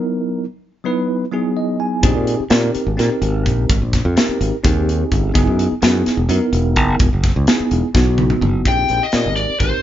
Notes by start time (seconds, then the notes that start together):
Already playing: F#3 B3 D#4 E4 A#4
0.84 F#3 B3 D#4 E4 B4
1.32 F#3 B3 D#4 E4 G#4
1.57 D#5
1.80 G#5
2.03 A#1 C4 D#4 G4 G#4, kick, closed hi-hat
2.15 A#2
2.27 closed hi-hat
2.40 muted fingered electric bass stroke
2.50 A#2 C4 D#4 G4 A#4, snare, closed hi-hat
2.75 muted fingered electric bass stroke, closed hi-hat
2.87 G#1
2.97 A#2 C4 D#4 G4 A#4, snare, closed hi-hat
3.22 G#1, closed hi-hat
3.46 A#1, kick, closed hi-hat
3.69 G#1, kick, closed hi-hat
3.82 A#1
3.93 kick, snare, closed hi-hat
4.05 F2
4.16 C4 D#4 G4 A#4, snare, closed hi-hat
4.29 muted fingered electric bass stroke
4.41 G#1, closed hi-hat
4.64 D#2 C4 D#4 G4 G#4, kick, closed hi-hat
4.89 closed hi-hat
5.12 G1, kick, closed hi-hat
5.34 F#1 B3 D#4 E4 G#4, kick, closed hi-hat
5.47 F#2
5.59 closed hi-hat
5.72 muted fingered electric bass stroke
5.82 F#2 B3 D#4 E4 G#4, snare, closed hi-hat
6.06 muted fingered electric bass stroke, snare, closed hi-hat
6.17 E1
6.29 F#2 B3 D#4 E4 A#4, closed hi-hat
6.53 E1, closed hi-hat
6.76 F#1, kick, closed hi-hat
6.99 E1, kick, closed hi-hat
7.13 F#1
7.23 kick, snare, closed hi-hat
7.36 C#2
7.47 B3 D#4 E4 G#4, snare, closed hi-hat
7.60 muted fingered electric bass stroke
7.71 E1, closed hi-hat
7.94 B1 B3 D#4 E4 F#4, kick, snare
8.18 high tom
8.30 mid tom
8.41 F#1, mid tom
8.65 A#1 C4 D#4 G4 G#4 G5, kick, closed hi-hat
8.88 A#1, closed hi-hat
9.03 D#5
9.12 A#2 C4 D#4 G4 A#4, snare, closed hi-hat
9.26 G#1
9.36 D5, closed hi-hat
9.50 muted fingered electric bass stroke
9.60 G#1 C4 D#4 G4 A#4 C5, kick, closed hi-hat